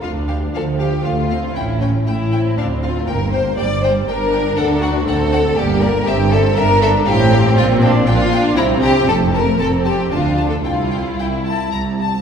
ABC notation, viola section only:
X:1
M:3/4
L:1/8
Q:1/4=118
K:Dm
V:1 name="Viola section"
D2 F,2 A, C | ^C2 A, =C3 | B,2 G,2 D2- | D2 C2 B,2 |
[K:Cmix] C2 D2 C2- | C2 D D C2 | A,2 C2 D2 | E4- E z |]